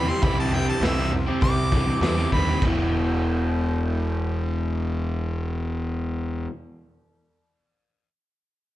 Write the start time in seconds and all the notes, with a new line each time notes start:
Already playing: E2 E3 G3 B5
0.08 G3 C4 G4 C6
0.22 C2 C3 E3 G3 C4 B5, kick, floor tom
0.27 G4
0.37 G3 C4 G4 A5
0.52 E3 G3 C4 G5, floor tom
0.56 G4
0.69 A5
0.81 C2 C3 E3 G3 E5, snare, floor tom
0.85 C4 G4
0.97 G3 C4 G4
1.12 muted overdriven electric guitar stroke, floor tom
1.26 C4 G4
1.30 G3
1.41 C2 D6, kick, floor tom
1.72 E3 G3 C4 G4, kick, floor tom
2.01 E2 C3 E3 G3 C4 D6, snare, floor tom
2.06 G4
2.17 G3 C4 G4
2.32 D#2 E3 G3 C4 B5, kick, floor tom
2.36 G4
2.48 C4 G4
2.52 G3
2.62 E1 E2 B2, kick, crash
2.67 E3